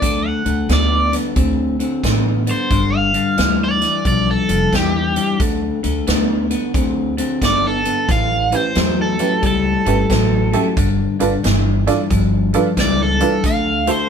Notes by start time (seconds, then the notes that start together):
Already playing: D5
0.02 D2 D3 A3, kick, closed hi-hat
0.27 F#5
0.45 D2 D3 A3, closed hi-hat
0.69 D2 D3 B3 D5, snare, closed hi-hat
1.12 D3 B3, snare, closed hi-hat
1.36 D2 D3 C4, kick, closed hi-hat
1.80 D3 C4, closed hi-hat
2.03 A1 D3 B3, kick, snare, closed hi-hat
2.47 D3 B3 C5, closed hi-hat
2.71 G1 G2 D3, kick, closed hi-hat
2.96 F5
3.14 G2 D3, closed hi-hat
3.37 D2 G2 E3, snare, closed hi-hat
3.64 D5
3.81 G2 E3, snare, closed hi-hat
4.05 B1 G2 F3 D5, kick, closed hi-hat
4.31 A4
4.48 F1 G2 F3, closed hi-hat
4.72 E2 G2 E3 G4, kick, snare, closed hi-hat
5.16 G2 E3, closed hi-hat
5.40 D2 D3 A3, kick, closed hi-hat
5.83 D2 D3 A3, closed hi-hat
6.07 D2 D3 B3, snare, closed hi-hat
6.51 D3 B3, closed hi-hat
6.74 D2 D3 C4, kick, closed hi-hat
7.17 D3 C4, closed hi-hat
7.41 G1 D3 B3 D5, kick, snare, closed hi-hat
7.67 A4
7.85 D3 B3, closed hi-hat
8.08 A1 A2 E3 F5, kick, closed hi-hat
8.52 A2 E3 C#4 E4 G4 B4, closed hi-hat
8.56 C5
8.75 E2 A2 F#3, snare, closed hi-hat
9.02 A4
9.19 A2 F#3 C#4 E4 G4 B4, closed hi-hat
9.42 C#2 A2 G3 A4, kick, closed hi-hat
9.85 G1 A2 G3 C#4 E4 G4 B4, closed hi-hat
10.10 A1 A2 F#3, kick, snare, closed hi-hat
10.53 A2 F#3 C#4 E4 G4 A4, closed hi-hat
10.77 G1 G2 D3, kick, closed hi-hat
11.19 G1 G2 D3 D4 F4 A4 B4, closed hi-hat
11.43 G1 G2 E3, snare, closed hi-hat
11.87 G2 E3 D4 F4 A4 D5, snare, closed hi-hat
12.10 G1 G2 F3, kick, closed hi-hat
12.53 G2 F3 D4 F4 A4 B4, closed hi-hat
12.77 C#2 G2 E3 D5, kick, snare, closed hi-hat
13.02 A4
13.20 G2 E3 D4 F4 A4 B4, closed hi-hat
13.44 D2 D3 A3 F5, kick, closed hi-hat
13.87 D3 A3 E4 F#4 A4 C5, closed hi-hat
13.91 C5